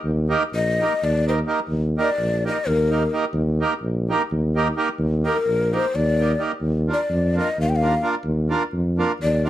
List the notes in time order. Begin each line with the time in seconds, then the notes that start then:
0.05 D#2
0.29 A#3 D#4 G4 A#4
0.53 A#1 D#5
0.80 A#3 D#4 G4 A#4
1.03 D#2 D5
1.26 A#3 D#4 G4 A#4 C5
1.46 A#3 D#4 G4 A#4
1.69 D#2
1.97 A#3 D#4 G4 A#4 D5
2.19 A#1
2.44 A#3 D#4 G4 A#4 D#5
2.67 D#2 A#4
2.90 A#3 D#4 G4 A#4
3.12 A#3 D#4 G4 A#4
3.33 D#2
3.60 A#3 D#4 G4 A#4
3.82 A#1
4.09 A#3 D#4 G4 A#4
4.32 D#2
4.55 A#3 D#4 G4 A#4
4.76 A#3 D#4 G4 A#4
4.98 D#2
5.23 A#3 D#4 G4 A#4
5.47 A#1
5.72 A#3 D#4 G4 A#4 C5
5.95 D#2 D5
6.19 A#3 D#4 G4 A#4
6.38 A#3 D#4 G4 A#4
6.61 D#2
6.87 A#3 D4 F4 A#4
6.93 D5
7.10 F2
7.35 A#3 D4 F4 A#4
7.39 D#5
7.58 D#2 F5
7.69 G5
7.76 F5
7.81 A#3 D4 F4 A#4
8.01 A#3 D4 F4 A#4
8.25 D#2
8.48 A#3 D4 F4 A#4
8.73 F2
8.97 A#3 D4 F4 A#4
9.22 D#2 D5
9.44 A#3 D4 F4 A#4